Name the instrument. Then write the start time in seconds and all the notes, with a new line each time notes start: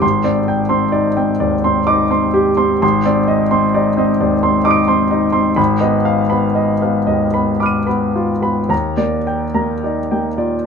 grand piano
0.02 G#1 C6
0.24 C4 D5
0.48 G5
0.69 C4 C6
0.92 D#4 D5
1.17 C4 G5
1.40 D#2 D5
1.64 C4 C6
1.87 D#4 D6
2.10 C4 C6
2.34 G4
2.57 C4 C6
2.82 G#1 C6
3.05 C4 D5
3.28 D#5
3.51 C4 C6
3.74 D#4 D5
3.97 C4 D#5
4.21 D#2 D5
4.43 C4 C6
4.64 D#4 C6 D6 D#6
4.71 D7
4.88 C4 C6
5.11 D#4
5.32 C4 C6
5.56 G#1 B5
5.80 B3 D#5
6.05 F5
6.30 B3 B5
6.55 D#5
6.82 B3 F5
7.06 D#2 D#5
7.34 B3 B5
7.60 B5 D6 F6
7.66 D#7
7.86 B3 B5
8.15 F4
8.42 B3 B5
8.69 D#2 A#5
8.97 A#3 D5
9.27 G5
9.54 A#3 A#5
9.84 D#4 D5
10.11 A#3 G5
10.38 A#2 D5